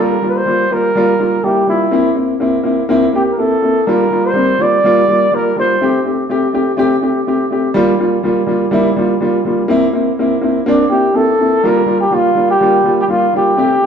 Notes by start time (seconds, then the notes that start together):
Already playing: G3 A#3 F4
0.01 A#4
0.22 G3 A#3 F4
0.29 B4
0.37 C5
0.46 G3 A#3 F4
0.71 G3 A#3 F4 A#4
0.95 G3 A#3 F4
1.19 G3 A#3 F4
1.43 G3 A#3 E4 G4
1.67 G3 A#3 E4 F4
1.91 A#3 C4 E4
2.15 A#3 C4 E4
2.40 A#3 C4 E4
2.63 A#3 C4 E4
2.89 A#3 C4 E4
3.13 A#3 C4 G4
3.32 A#4
3.38 A#3 C4 E4 A4
3.62 A#3 C4 E4
3.87 G3 A#3 F4 A#4
4.10 G3 A#3 F4
4.26 C5
4.33 G3 A#3 C4
4.59 G3 A#3 F4 D5
4.84 G3 A#3 F4
5.08 G3 A#3 F4
5.31 G3 A#3 F4 A#4
5.56 G3 A#3 F4 C5
5.81 A3 C4 G4
6.05 A3 C4 G4
6.29 A3 C4 G4
6.53 A3 C4 G4
6.77 A3 C4 G4
7.01 A3 C4 G4
7.27 A3 C4 G4
7.50 A3 C4 G4
7.74 G3 A#3 F4
7.99 G3 A#3 F4
8.23 G3 A#3 F4
8.47 G3 A#3 F4
8.71 G3 A#3 E4
8.96 G3 A#3 F4
9.21 G3 A#3 F4
9.45 G3 A#3 F4
9.68 A#3 C4 E4
9.93 A#3 C4 E4
10.19 A#3 C4 E4
10.41 A#3 C4 E4
10.66 A#3 C4 D4
10.90 A#3 C4 E4 G4
11.14 A#3 C4 E4 A4
11.39 A#3 C4 E4
11.64 G3 A#3 F4 A#4
11.86 G3 A#3 F4
12.00 G4
12.11 G3 A#3 F4
12.35 G3 A#3 F4
12.51 G4
12.61 G3 A#3 F4
12.84 G3 A#3 F4
13.00 G4
13.08 G3 A#3 F4
13.33 G3 A#3 F4 G4
13.57 A3 C4 G4
13.82 A3